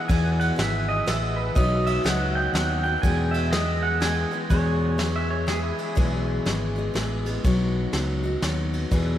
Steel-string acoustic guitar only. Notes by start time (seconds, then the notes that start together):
Already playing: B3 G#4
0.09 E2 B2 E3 B3 E4 G#4
0.56 E3 B3 E4 G#4
1.07 E3 B3 E4 G#4
1.55 B2 F#3 B3 D#4 F#4
2.04 F#3 B3 D#4 F#4
2.54 F#3 B3 D#4 F#4
2.84 B3 D#4 F#4
3.03 E2 B2 E3 G#3 B3 G#4
3.53 E3 G#3 B3 G#4
4.00 E3 G#3 B3 G#4
4.31 E3 G#3 B3 G#4
4.50 E2 B2 E3 G#3 B3 G#4
4.98 E3 G#3 B3 G#4
5.47 E3 G#3 B3 G#4
5.95 E2 B2 E3 G#3 B3 G#4
6.46 E3 G#3 B3 G#4
6.76 E3 G#3 B3 G#4
6.94 E3 G#3 B3 G#4
7.26 E3 G#3 B3 G#4
7.44 B2 F#3 B3 D#4 F#4
7.93 F#3 B3 D#4 F#4
8.24 B3 D#4 F#4
8.42 F#3 B3 D#4 F#4
8.91 E2 B2 E3 B3 E4 G#4